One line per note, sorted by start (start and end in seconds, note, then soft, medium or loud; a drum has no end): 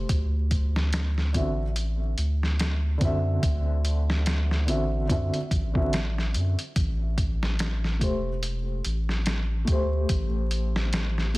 0.09 1.36 D2 loud
0.09 kick loud
0.09 closed hi-hat medium
0.51 kick medium
0.51 closed hi-hat medium
0.76 snare medium
0.93 snare loud
0.93 closed hi-hat medium
1.18 snare soft
1.33 2.15 A1 medium
1.33 1.61 D3 medium
1.33 1.61 C4 medium
1.33 1.62 F#4 medium
1.33 kick medium
1.33 closed hi-hat medium
1.37 1.63 E5 medium
1.76 closed hi-hat medium
2.18 2.98 D2 medium
2.18 closed hi-hat medium
2.43 snare soft
2.59 snare loud
2.59 closed hi-hat medium
2.98 3.39 F#2 medium
2.98 4.62 D3 medium
2.98 4.63 C4 medium
2.98 kick medium
2.98 closed hi-hat medium
3.02 4.64 F#4 medium
3.02 4.65 E5 loud
3.43 4.70 D2 loud
3.43 kick loud
3.43 closed hi-hat medium
3.85 closed hi-hat medium
4.10 snare medium
4.26 snare loud
4.26 closed hi-hat medium
4.51 snare soft
4.66 5.11 A1 medium
4.66 5.04 D3 medium
4.66 5.05 C4 medium
4.66 5.05 F#4 medium
4.66 5.06 E5 medium
4.66 closed hi-hat medium
5.08 5.31 F#2 medium
5.08 5.36 D3 medium
5.08 5.37 C4 medium
5.08 5.37 F#4 medium
5.08 5.38 E5 medium
5.08 kick loud
5.08 closed hi-hat medium
5.34 closed hi-hat soft
5.51 6.36 A1 medium
5.51 kick medium
5.51 closed hi-hat medium
5.74 5.96 D3 medium
5.74 5.97 C4 medium
5.74 5.97 F#4 medium
5.74 5.98 E5 medium
5.74 kick loud
5.93 snare loud
5.93 closed hi-hat medium
6.18 snare soft
6.34 6.56 F#2 medium
6.34 closed hi-hat medium
6.59 closed hi-hat soft
6.76 8.03 A1 loud
6.76 kick loud
6.76 closed hi-hat medium
7.18 kick medium
7.18 closed hi-hat medium
7.43 snare medium
7.59 snare loud
7.59 closed hi-hat medium
7.84 snare soft
7.99 8.81 E1 medium
7.99 8.27 A3 medium
7.99 8.28 G4 medium
7.99 8.29 C5 medium
7.99 kick medium
7.99 closed hi-hat medium
8.43 closed hi-hat medium
8.85 9.65 A1 medium
8.85 closed hi-hat medium
9.09 snare soft
9.26 snare loud
9.26 closed hi-hat medium
9.65 10.05 D2 medium
9.65 11.29 A3 medium
9.65 11.30 G4 medium
9.65 kick medium
9.65 closed hi-hat medium
9.72 11.32 C5 medium
10.09 11.37 A1 loud
10.09 kick loud
10.09 closed hi-hat medium
10.51 closed hi-hat medium
10.76 snare medium
10.93 snare loud
10.93 closed hi-hat medium
11.18 snare soft
11.34 11.38 A3 medium
11.34 closed hi-hat medium